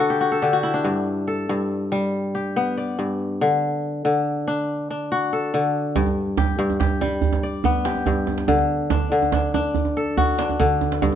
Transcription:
Already playing: kora D3 D4 B4 D5
0.00 kora F#4 A4
0.10 kora G4
0.21 kora F#4
0.32 kora A4
0.42 kora D3 G4
0.53 kora F#4
0.63 kora E4
0.74 kora D4
0.84 kora G2
1.27 kora A4
1.49 kora G2
1.92 kora G3
2.35 kora G4
2.56 kora B3
2.77 kora D5
2.99 kora G2
3.41 kora D3
4.05 kora D3
4.48 kora D4
4.90 kora D4
5.12 kora F#4
5.33 kora A4
5.54 kora D3
5.96 kora G2, djembe bass
6.06 djembe tone
6.37 kora G4, djembe slap, djembe tone, djembe bass
6.59 kora G2
6.70 djembe tone
6.80 kora G4, djembe slap, djembe bass
7.01 kora G3, djembe slap, djembe tone
7.22 djembe bass
7.33 djembe slap, djembe tone
7.43 kora D5
7.64 kora B3, djembe slap, djembe tone, djembe bass
7.85 kora G4, djembe slap
7.95 djembe tone
8.06 kora G2, djembe slap, djembe bass
8.27 djembe tone
8.38 djembe slap
8.48 kora D3, djembe bass
8.59 djembe tone
8.90 kora D4, djembe slap, djembe tone, djembe bass
9.12 kora D3
9.22 djembe tone
9.32 kora D4, djembe slap, djembe bass
9.54 kora D4, djembe slap, djembe tone
9.75 djembe bass
9.85 djembe tone
9.97 kora A4
10.17 kora F#4, djembe slap, djembe tone, djembe bass
10.38 kora D4, djembe slap
10.50 djembe tone
10.60 kora D3, djembe slap, djembe bass
10.81 djembe tone
10.92 djembe slap
11.02 kora G2, djembe bass

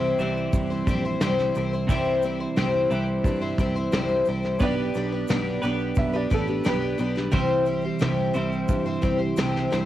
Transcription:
Already playing: picked electric bass C2, twelve-string acoustic guitar C3 G3 C4 E4 C5, clean electric guitar C3 E3 G3 C4 E4
0.19 picked electric bass C2, clean electric guitar C3 E3, twelve-string acoustic guitar G3 C4 E4 C5, shaker
0.37 shaker
0.53 picked electric bass C2, kick, open hi-hat, shaker
0.70 twelve-string acoustic guitar C4 E4 C5, shaker
0.87 picked electric bass A#1, twelve-string acoustic guitar G3 C4 E4 C5, kick, shaker
1.05 twelve-string acoustic guitar C4 E4 C5, shaker
1.20 picked electric bass C2, twelve-string acoustic guitar C3 G3 C4 E4 C5, snare, open hi-hat, shaker
1.39 snare, shaker
1.55 picked electric bass C2, twelve-string acoustic guitar G3 C4 E4 C5, shaker
1.73 twelve-string acoustic guitar C4 E4 C5, shaker
1.88 picked electric bass C2, twelve-string acoustic guitar C3 G3 C4 E4 C5, clean electric guitar E3, kick, open hi-hat, shaker
2.22 twelve-string acoustic guitar G3 C4 E4 C5, shaker
2.40 twelve-string acoustic guitar C4 E4 C5
2.56 picked electric bass C2, twelve-string acoustic guitar C3 G3 C4 E4 C5, snare, open hi-hat, shaker
2.91 picked electric bass C2, clean electric guitar C3 E3, twelve-string acoustic guitar G3 C4 E4 C5, shaker
3.07 shaker
3.24 picked electric bass G2, kick, open hi-hat, shaker
3.41 twelve-string acoustic guitar C4 E4 C5, shaker
3.58 picked electric bass C2, twelve-string acoustic guitar G3 C4 E4 C5, kick, shaker
3.76 twelve-string acoustic guitar C4 E4 C5, shaker
3.92 picked electric bass C2, twelve-string acoustic guitar C3 G3 C4 E4 C5, snare, open hi-hat, shaker
4.08 shaker
4.25 picked electric bass C2, twelve-string acoustic guitar G3 C4 E4, shaker
4.29 twelve-string acoustic guitar C5
4.43 snare, shaker
4.59 picked electric bass B1, twelve-string acoustic guitar B3 D4 G4 B4, upright piano C#5, kick, open hi-hat, shaker
4.63 upright piano D5
4.94 picked electric bass B1, twelve-string acoustic guitar B3 D4 G4 B4, shaker
5.12 twelve-string acoustic guitar D4 G4 B4
5.28 picked electric bass B1, twelve-string acoustic guitar B3 D4 G4 B4, snare, open hi-hat, shaker
5.62 picked electric bass B1, twelve-string acoustic guitar B3 D4 G4 B4, shaker
5.79 shaker
5.95 picked electric bass B1, upright piano E5, kick, open hi-hat, shaker
6.13 twelve-string acoustic guitar D4 G4 B4, upright piano D5, shaker
6.30 picked electric bass A1, twelve-string acoustic guitar B3 D4 G4 B4, upright piano A4, kick, shaker
6.47 twelve-string acoustic guitar D4 G4 B4, shaker
6.64 picked electric bass B1, twelve-string acoustic guitar B3 D4 G4 B4, snare, open hi-hat, shaker
6.68 upright piano B4
6.81 shaker
6.98 picked electric bass B1, twelve-string acoustic guitar B3 D4 G4 B4, shaker
7.15 twelve-string acoustic guitar D4 G4 B4, snare, shaker
7.31 picked electric bass C2, twelve-string acoustic guitar C3 C4 E4 G4 C5, clean electric guitar E3 G3, kick, open hi-hat, shaker
7.48 shaker
7.66 twelve-string acoustic guitar C4 E4 G4 C5, shaker
7.82 twelve-string acoustic guitar G4 C5, shaker
7.86 twelve-string acoustic guitar E4
7.99 picked electric bass C2, twelve-string acoustic guitar C3 C4 E4 G4 C5, snare, open hi-hat, shaker
8.18 shaker
8.34 picked electric bass C2, clean electric guitar C3 E3 G3, twelve-string acoustic guitar C4 E4 G4 C5, shaker
8.52 shaker
8.68 picked electric bass G2, kick, open hi-hat, shaker
8.85 twelve-string acoustic guitar E4 G4 C5, shaker
9.02 picked electric bass C2, twelve-string acoustic guitar C4 E4 G4 C5, kick, shaker
9.18 twelve-string acoustic guitar E4 G4 C5
9.36 picked electric bass C2, twelve-string acoustic guitar C3 C4 E4 G4 C5, snare, open hi-hat, shaker
9.56 snare
9.70 picked electric bass C2, twelve-string acoustic guitar C4 E4 G4 C5, snare, shaker

